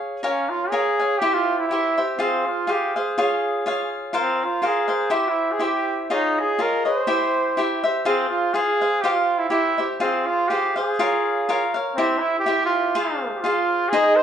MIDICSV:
0, 0, Header, 1, 3, 480
1, 0, Start_track
1, 0, Key_signature, -4, "minor"
1, 0, Tempo, 488998
1, 229, Time_signature, 2, 2, 24, 8
1, 13966, End_track
2, 0, Start_track
2, 0, Title_t, "Cavaquinho"
2, 0, Program_c, 0, 24
2, 0, Note_on_c, 0, 68, 52
2, 0, Note_on_c, 0, 73, 62
2, 0, Note_on_c, 0, 77, 51
2, 0, Note_on_c, 0, 80, 58
2, 220, Note_off_c, 0, 68, 0
2, 221, Note_off_c, 0, 73, 0
2, 224, Note_off_c, 0, 77, 0
2, 225, Note_on_c, 0, 70, 58
2, 227, Note_off_c, 0, 80, 0
2, 233, Note_on_c, 0, 73, 52
2, 236, Note_on_c, 0, 77, 60
2, 239, Note_on_c, 0, 80, 62
2, 696, Note_off_c, 0, 70, 0
2, 699, Note_off_c, 0, 73, 0
2, 707, Note_on_c, 0, 70, 45
2, 708, Note_off_c, 0, 77, 0
2, 711, Note_on_c, 0, 73, 50
2, 712, Note_off_c, 0, 80, 0
2, 720, Note_on_c, 0, 77, 51
2, 723, Note_on_c, 0, 80, 52
2, 964, Note_off_c, 0, 80, 0
2, 965, Note_off_c, 0, 70, 0
2, 966, Note_off_c, 0, 73, 0
2, 971, Note_off_c, 0, 77, 0
2, 976, Note_on_c, 0, 80, 38
2, 983, Note_on_c, 0, 77, 35
2, 995, Note_on_c, 0, 73, 32
2, 1191, Note_off_c, 0, 80, 0
2, 1193, Note_off_c, 0, 73, 0
2, 1193, Note_on_c, 0, 64, 52
2, 1195, Note_off_c, 0, 77, 0
2, 1197, Note_on_c, 0, 67, 68
2, 1201, Note_on_c, 0, 76, 57
2, 1204, Note_on_c, 0, 72, 64
2, 1664, Note_off_c, 0, 64, 0
2, 1666, Note_off_c, 0, 67, 0
2, 1674, Note_off_c, 0, 76, 0
2, 1675, Note_off_c, 0, 72, 0
2, 1676, Note_on_c, 0, 64, 45
2, 1678, Note_on_c, 0, 67, 45
2, 1689, Note_on_c, 0, 72, 43
2, 1691, Note_on_c, 0, 76, 44
2, 1927, Note_off_c, 0, 76, 0
2, 1930, Note_off_c, 0, 64, 0
2, 1930, Note_off_c, 0, 72, 0
2, 1931, Note_off_c, 0, 67, 0
2, 1939, Note_on_c, 0, 76, 35
2, 1941, Note_on_c, 0, 72, 34
2, 1949, Note_on_c, 0, 67, 26
2, 2143, Note_off_c, 0, 72, 0
2, 2146, Note_on_c, 0, 65, 54
2, 2152, Note_off_c, 0, 67, 0
2, 2154, Note_on_c, 0, 72, 53
2, 2155, Note_off_c, 0, 76, 0
2, 2156, Note_on_c, 0, 68, 59
2, 2160, Note_on_c, 0, 77, 67
2, 2616, Note_off_c, 0, 68, 0
2, 2619, Note_off_c, 0, 65, 0
2, 2623, Note_on_c, 0, 65, 48
2, 2626, Note_off_c, 0, 72, 0
2, 2628, Note_on_c, 0, 68, 44
2, 2638, Note_on_c, 0, 72, 49
2, 2640, Note_off_c, 0, 77, 0
2, 2644, Note_on_c, 0, 77, 48
2, 2884, Note_off_c, 0, 65, 0
2, 2887, Note_off_c, 0, 68, 0
2, 2892, Note_off_c, 0, 72, 0
2, 2895, Note_off_c, 0, 77, 0
2, 2905, Note_on_c, 0, 77, 37
2, 2913, Note_on_c, 0, 72, 38
2, 2918, Note_on_c, 0, 68, 29
2, 3114, Note_off_c, 0, 68, 0
2, 3117, Note_off_c, 0, 77, 0
2, 3118, Note_on_c, 0, 65, 56
2, 3121, Note_off_c, 0, 72, 0
2, 3125, Note_on_c, 0, 73, 61
2, 3126, Note_on_c, 0, 68, 57
2, 3129, Note_on_c, 0, 77, 69
2, 3579, Note_off_c, 0, 65, 0
2, 3584, Note_off_c, 0, 68, 0
2, 3589, Note_off_c, 0, 73, 0
2, 3591, Note_on_c, 0, 65, 51
2, 3596, Note_off_c, 0, 77, 0
2, 3596, Note_on_c, 0, 68, 49
2, 3601, Note_on_c, 0, 73, 56
2, 3611, Note_on_c, 0, 77, 70
2, 4043, Note_off_c, 0, 65, 0
2, 4054, Note_on_c, 0, 65, 52
2, 4056, Note_off_c, 0, 68, 0
2, 4058, Note_off_c, 0, 77, 0
2, 4060, Note_on_c, 0, 70, 61
2, 4062, Note_off_c, 0, 73, 0
2, 4066, Note_on_c, 0, 72, 73
2, 4069, Note_on_c, 0, 77, 76
2, 4522, Note_off_c, 0, 65, 0
2, 4529, Note_off_c, 0, 70, 0
2, 4533, Note_off_c, 0, 72, 0
2, 4534, Note_on_c, 0, 65, 42
2, 4536, Note_off_c, 0, 77, 0
2, 4540, Note_on_c, 0, 70, 49
2, 4545, Note_on_c, 0, 72, 50
2, 4548, Note_on_c, 0, 77, 54
2, 4776, Note_off_c, 0, 77, 0
2, 4785, Note_off_c, 0, 72, 0
2, 4788, Note_on_c, 0, 77, 39
2, 4790, Note_off_c, 0, 70, 0
2, 4796, Note_off_c, 0, 65, 0
2, 4796, Note_on_c, 0, 72, 41
2, 4802, Note_on_c, 0, 70, 31
2, 5001, Note_off_c, 0, 72, 0
2, 5003, Note_off_c, 0, 70, 0
2, 5006, Note_on_c, 0, 67, 58
2, 5007, Note_on_c, 0, 64, 53
2, 5013, Note_on_c, 0, 72, 70
2, 5014, Note_off_c, 0, 77, 0
2, 5018, Note_on_c, 0, 76, 77
2, 5480, Note_off_c, 0, 64, 0
2, 5487, Note_off_c, 0, 72, 0
2, 5489, Note_off_c, 0, 67, 0
2, 5491, Note_on_c, 0, 64, 39
2, 5492, Note_off_c, 0, 76, 0
2, 5499, Note_on_c, 0, 72, 49
2, 5501, Note_on_c, 0, 67, 42
2, 5504, Note_on_c, 0, 76, 54
2, 5979, Note_off_c, 0, 64, 0
2, 5982, Note_off_c, 0, 72, 0
2, 5984, Note_off_c, 0, 67, 0
2, 5985, Note_off_c, 0, 76, 0
2, 5989, Note_on_c, 0, 65, 52
2, 5992, Note_on_c, 0, 68, 49
2, 5997, Note_on_c, 0, 75, 61
2, 5999, Note_on_c, 0, 73, 51
2, 6453, Note_off_c, 0, 65, 0
2, 6457, Note_off_c, 0, 68, 0
2, 6464, Note_on_c, 0, 65, 51
2, 6466, Note_off_c, 0, 75, 0
2, 6467, Note_off_c, 0, 73, 0
2, 6469, Note_on_c, 0, 68, 52
2, 6478, Note_on_c, 0, 75, 48
2, 6479, Note_on_c, 0, 73, 50
2, 6712, Note_off_c, 0, 75, 0
2, 6719, Note_off_c, 0, 73, 0
2, 6722, Note_off_c, 0, 68, 0
2, 6723, Note_off_c, 0, 65, 0
2, 6724, Note_on_c, 0, 75, 31
2, 6731, Note_on_c, 0, 73, 36
2, 6734, Note_on_c, 0, 68, 27
2, 6937, Note_off_c, 0, 68, 0
2, 6941, Note_on_c, 0, 64, 53
2, 6941, Note_on_c, 0, 67, 59
2, 6942, Note_off_c, 0, 73, 0
2, 6945, Note_off_c, 0, 75, 0
2, 6946, Note_on_c, 0, 72, 66
2, 6949, Note_on_c, 0, 76, 63
2, 7420, Note_off_c, 0, 64, 0
2, 7422, Note_off_c, 0, 67, 0
2, 7426, Note_off_c, 0, 76, 0
2, 7431, Note_on_c, 0, 64, 51
2, 7438, Note_on_c, 0, 67, 57
2, 7442, Note_off_c, 0, 72, 0
2, 7446, Note_on_c, 0, 72, 53
2, 7452, Note_on_c, 0, 76, 61
2, 7679, Note_off_c, 0, 76, 0
2, 7685, Note_off_c, 0, 64, 0
2, 7688, Note_off_c, 0, 67, 0
2, 7691, Note_on_c, 0, 76, 51
2, 7692, Note_off_c, 0, 72, 0
2, 7705, Note_on_c, 0, 72, 41
2, 7708, Note_on_c, 0, 67, 33
2, 7901, Note_off_c, 0, 72, 0
2, 7905, Note_on_c, 0, 65, 65
2, 7907, Note_off_c, 0, 67, 0
2, 7907, Note_off_c, 0, 76, 0
2, 7911, Note_on_c, 0, 68, 60
2, 7912, Note_on_c, 0, 72, 78
2, 7914, Note_on_c, 0, 77, 66
2, 8369, Note_off_c, 0, 65, 0
2, 8375, Note_off_c, 0, 68, 0
2, 8381, Note_on_c, 0, 65, 39
2, 8385, Note_off_c, 0, 77, 0
2, 8387, Note_on_c, 0, 68, 51
2, 8392, Note_off_c, 0, 72, 0
2, 8396, Note_on_c, 0, 72, 46
2, 8397, Note_on_c, 0, 77, 62
2, 8640, Note_off_c, 0, 65, 0
2, 8640, Note_off_c, 0, 77, 0
2, 8642, Note_off_c, 0, 68, 0
2, 8644, Note_off_c, 0, 72, 0
2, 8652, Note_on_c, 0, 77, 35
2, 8656, Note_on_c, 0, 72, 29
2, 8662, Note_on_c, 0, 68, 29
2, 8863, Note_off_c, 0, 72, 0
2, 8868, Note_off_c, 0, 77, 0
2, 8870, Note_on_c, 0, 65, 64
2, 8873, Note_off_c, 0, 68, 0
2, 8875, Note_on_c, 0, 72, 61
2, 8877, Note_on_c, 0, 67, 50
2, 8882, Note_on_c, 0, 77, 70
2, 9314, Note_off_c, 0, 67, 0
2, 9323, Note_off_c, 0, 65, 0
2, 9326, Note_on_c, 0, 67, 48
2, 9327, Note_on_c, 0, 64, 38
2, 9328, Note_off_c, 0, 72, 0
2, 9339, Note_off_c, 0, 77, 0
2, 9340, Note_on_c, 0, 72, 53
2, 9343, Note_on_c, 0, 76, 52
2, 9587, Note_off_c, 0, 76, 0
2, 9595, Note_off_c, 0, 67, 0
2, 9596, Note_off_c, 0, 64, 0
2, 9599, Note_on_c, 0, 76, 33
2, 9602, Note_off_c, 0, 72, 0
2, 9612, Note_on_c, 0, 72, 31
2, 9616, Note_on_c, 0, 67, 30
2, 9809, Note_off_c, 0, 72, 0
2, 9813, Note_off_c, 0, 67, 0
2, 9817, Note_on_c, 0, 65, 57
2, 9817, Note_on_c, 0, 68, 59
2, 9821, Note_on_c, 0, 72, 54
2, 9823, Note_off_c, 0, 76, 0
2, 9827, Note_on_c, 0, 77, 51
2, 10296, Note_off_c, 0, 65, 0
2, 10302, Note_off_c, 0, 68, 0
2, 10304, Note_off_c, 0, 72, 0
2, 10308, Note_on_c, 0, 65, 40
2, 10310, Note_off_c, 0, 77, 0
2, 10313, Note_on_c, 0, 68, 47
2, 10316, Note_on_c, 0, 72, 40
2, 10321, Note_on_c, 0, 77, 49
2, 10548, Note_off_c, 0, 77, 0
2, 10559, Note_off_c, 0, 72, 0
2, 10560, Note_on_c, 0, 77, 44
2, 10566, Note_off_c, 0, 68, 0
2, 10568, Note_off_c, 0, 65, 0
2, 10571, Note_on_c, 0, 72, 34
2, 10578, Note_on_c, 0, 68, 35
2, 10786, Note_off_c, 0, 77, 0
2, 10790, Note_off_c, 0, 68, 0
2, 10790, Note_on_c, 0, 65, 66
2, 10792, Note_off_c, 0, 72, 0
2, 10794, Note_on_c, 0, 70, 71
2, 10800, Note_on_c, 0, 73, 63
2, 10804, Note_on_c, 0, 77, 70
2, 11265, Note_off_c, 0, 65, 0
2, 11270, Note_off_c, 0, 70, 0
2, 11273, Note_off_c, 0, 73, 0
2, 11276, Note_off_c, 0, 77, 0
2, 11277, Note_on_c, 0, 65, 58
2, 11282, Note_on_c, 0, 70, 60
2, 11284, Note_on_c, 0, 73, 55
2, 11287, Note_on_c, 0, 77, 61
2, 11514, Note_off_c, 0, 77, 0
2, 11526, Note_on_c, 0, 77, 50
2, 11529, Note_off_c, 0, 73, 0
2, 11532, Note_off_c, 0, 65, 0
2, 11534, Note_off_c, 0, 70, 0
2, 11541, Note_on_c, 0, 73, 36
2, 11545, Note_on_c, 0, 70, 32
2, 11749, Note_off_c, 0, 77, 0
2, 11755, Note_off_c, 0, 73, 0
2, 11756, Note_off_c, 0, 70, 0
2, 11759, Note_on_c, 0, 64, 53
2, 11759, Note_on_c, 0, 72, 73
2, 11760, Note_on_c, 0, 67, 53
2, 11766, Note_on_c, 0, 76, 69
2, 12219, Note_off_c, 0, 64, 0
2, 12224, Note_off_c, 0, 67, 0
2, 12231, Note_on_c, 0, 64, 45
2, 12235, Note_on_c, 0, 67, 60
2, 12237, Note_off_c, 0, 76, 0
2, 12242, Note_off_c, 0, 72, 0
2, 12246, Note_on_c, 0, 72, 50
2, 12248, Note_on_c, 0, 76, 55
2, 12707, Note_off_c, 0, 64, 0
2, 12709, Note_off_c, 0, 67, 0
2, 12710, Note_off_c, 0, 72, 0
2, 12711, Note_on_c, 0, 65, 63
2, 12713, Note_on_c, 0, 68, 60
2, 12714, Note_on_c, 0, 72, 65
2, 12718, Note_off_c, 0, 76, 0
2, 12723, Note_on_c, 0, 77, 71
2, 13179, Note_off_c, 0, 65, 0
2, 13188, Note_off_c, 0, 68, 0
2, 13191, Note_on_c, 0, 65, 54
2, 13196, Note_off_c, 0, 77, 0
2, 13200, Note_on_c, 0, 68, 49
2, 13208, Note_off_c, 0, 72, 0
2, 13211, Note_on_c, 0, 77, 57
2, 13212, Note_on_c, 0, 72, 52
2, 13660, Note_off_c, 0, 68, 0
2, 13667, Note_off_c, 0, 65, 0
2, 13671, Note_on_c, 0, 63, 61
2, 13672, Note_on_c, 0, 68, 71
2, 13675, Note_off_c, 0, 72, 0
2, 13679, Note_on_c, 0, 72, 72
2, 13680, Note_off_c, 0, 77, 0
2, 13684, Note_on_c, 0, 75, 69
2, 13966, Note_off_c, 0, 63, 0
2, 13966, Note_off_c, 0, 68, 0
2, 13966, Note_off_c, 0, 72, 0
2, 13966, Note_off_c, 0, 75, 0
2, 13966, End_track
3, 0, Start_track
3, 0, Title_t, "Trumpet"
3, 0, Program_c, 1, 56
3, 235, Note_on_c, 1, 61, 72
3, 485, Note_on_c, 1, 65, 82
3, 500, Note_off_c, 1, 61, 0
3, 687, Note_on_c, 1, 68, 83
3, 702, Note_off_c, 1, 65, 0
3, 1161, Note_on_c, 1, 67, 93
3, 1176, Note_off_c, 1, 68, 0
3, 1315, Note_on_c, 1, 65, 78
3, 1330, Note_off_c, 1, 67, 0
3, 1555, Note_off_c, 1, 65, 0
3, 1560, Note_on_c, 1, 64, 66
3, 1642, Note_off_c, 1, 64, 0
3, 1648, Note_on_c, 1, 64, 71
3, 2001, Note_off_c, 1, 64, 0
3, 2140, Note_on_c, 1, 60, 67
3, 2416, Note_on_c, 1, 65, 67
3, 2431, Note_off_c, 1, 60, 0
3, 2652, Note_on_c, 1, 67, 74
3, 2667, Note_off_c, 1, 65, 0
3, 2896, Note_on_c, 1, 68, 60
3, 2911, Note_off_c, 1, 67, 0
3, 3847, Note_off_c, 1, 68, 0
3, 4117, Note_on_c, 1, 60, 67
3, 4363, Note_on_c, 1, 65, 68
3, 4378, Note_off_c, 1, 60, 0
3, 4564, Note_on_c, 1, 68, 80
3, 4578, Note_off_c, 1, 65, 0
3, 5032, Note_off_c, 1, 68, 0
3, 5041, Note_on_c, 1, 67, 76
3, 5190, Note_on_c, 1, 64, 65
3, 5205, Note_off_c, 1, 67, 0
3, 5418, Note_on_c, 1, 68, 73
3, 5433, Note_off_c, 1, 64, 0
3, 5529, Note_on_c, 1, 67, 77
3, 5543, Note_off_c, 1, 68, 0
3, 5886, Note_off_c, 1, 67, 0
3, 6015, Note_on_c, 1, 63, 74
3, 6279, Note_on_c, 1, 68, 78
3, 6294, Note_off_c, 1, 63, 0
3, 6491, Note_on_c, 1, 70, 86
3, 6506, Note_off_c, 1, 68, 0
3, 6729, Note_off_c, 1, 70, 0
3, 6735, Note_on_c, 1, 72, 74
3, 7648, Note_off_c, 1, 72, 0
3, 7908, Note_on_c, 1, 60, 84
3, 8137, Note_off_c, 1, 60, 0
3, 8143, Note_on_c, 1, 65, 80
3, 8383, Note_on_c, 1, 68, 91
3, 8398, Note_off_c, 1, 65, 0
3, 8847, Note_on_c, 1, 67, 83
3, 8862, Note_off_c, 1, 68, 0
3, 8953, Note_off_c, 1, 67, 0
3, 8959, Note_on_c, 1, 65, 73
3, 9210, Note_on_c, 1, 64, 66
3, 9225, Note_off_c, 1, 65, 0
3, 9308, Note_off_c, 1, 64, 0
3, 9314, Note_on_c, 1, 64, 81
3, 9674, Note_off_c, 1, 64, 0
3, 9820, Note_on_c, 1, 60, 72
3, 10083, Note_on_c, 1, 65, 74
3, 10098, Note_off_c, 1, 60, 0
3, 10291, Note_on_c, 1, 67, 83
3, 10305, Note_off_c, 1, 65, 0
3, 10559, Note_off_c, 1, 67, 0
3, 10571, Note_on_c, 1, 68, 71
3, 11490, Note_off_c, 1, 68, 0
3, 11734, Note_on_c, 1, 60, 77
3, 11962, Note_on_c, 1, 64, 74
3, 11977, Note_off_c, 1, 60, 0
3, 12158, Note_off_c, 1, 64, 0
3, 12164, Note_on_c, 1, 67, 87
3, 12416, Note_off_c, 1, 67, 0
3, 12422, Note_on_c, 1, 65, 70
3, 13053, Note_off_c, 1, 65, 0
3, 13098, Note_on_c, 1, 67, 45
3, 13160, Note_on_c, 1, 65, 80
3, 13175, Note_off_c, 1, 67, 0
3, 13635, Note_on_c, 1, 68, 94
3, 13650, Note_off_c, 1, 65, 0
3, 13900, Note_on_c, 1, 72, 86
3, 13915, Note_off_c, 1, 68, 0
3, 13966, Note_off_c, 1, 72, 0
3, 13966, End_track
0, 0, End_of_file